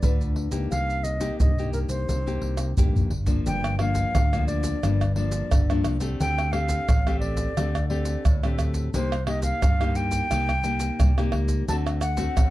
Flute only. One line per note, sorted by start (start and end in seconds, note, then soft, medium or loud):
0.00 0.32 D5 medium
0.71 1.05 F5 loud
1.04 1.39 D#5 medium
1.40 1.72 D#5 medium
1.73 1.79 A#4 medium
1.89 2.72 C5 medium
3.47 3.78 G5 medium
3.80 4.44 F5 loud
4.47 5.12 D5 medium
5.16 5.81 D5 medium
6.20 6.53 G5 loud
6.52 7.19 F5 loud
7.19 7.86 D5 medium
7.89 8.55 D5 medium
8.95 9.26 C5 medium
9.27 9.43 D#5 medium
9.44 9.98 F5 loud
9.96 11.34 G5 loud
11.69 11.76 A5 loud
12.02 12.50 F#5 loud